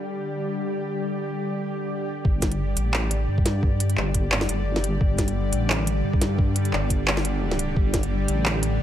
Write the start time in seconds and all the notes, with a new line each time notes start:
Already playing: D3 G3 G4 D5
2.25 G1, kick
2.42 kick, snare, closed hi-hat
2.52 closed hi-hat
2.77 A1, closed hi-hat
2.94 clap
3.11 closed hi-hat
3.28 G2
3.38 kick
3.46 snare, closed hi-hat
3.63 kick
3.80 closed hi-hat
3.90 closed hi-hat
3.97 G1, clap
4.14 kick, closed hi-hat
4.32 clap
4.41 snare
4.49 G1, closed hi-hat
4.76 snare
4.84 closed hi-hat
5.01 G1, kick
5.18 kick, snare, closed hi-hat
5.28 closed hi-hat
5.52 A1, closed hi-hat
5.70 clap
5.87 closed hi-hat
6.04 G2
6.13 kick
6.21 snare, closed hi-hat
6.39 kick
6.56 closed hi-hat
6.65 closed hi-hat
6.73 G1, clap
6.90 kick, closed hi-hat
7.08 clap
7.17 snare
7.25 closed hi-hat
7.51 snare
7.59 closed hi-hat
7.76 G1, kick
7.94 kick, snare, closed hi-hat
8.03 closed hi-hat
8.28 A1, closed hi-hat
8.46 clap
8.63 closed hi-hat